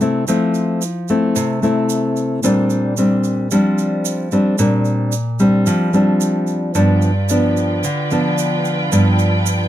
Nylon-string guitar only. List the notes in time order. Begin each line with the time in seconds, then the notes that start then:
Already playing: C3
0.01 A3 C4 E4
0.28 F3 A3 C4 E4
1.10 A3 C4 E4
1.36 C3
1.63 A3 C4 E4
2.43 A#2 G3 C4 D4
2.98 G3 C4 D4
3.51 F3 G3 C4 D4
4.32 G3 C4 D4
4.59 A#2 G3 C4 D4
5.40 G3 C4 D4
5.67 F3
5.93 G3 C4 D4
6.75 G2 F3 B3 D4
7.30 F3 B3 D4
7.84 D3
8.11 F3 B3 D4
8.92 G2 F3 B3 D4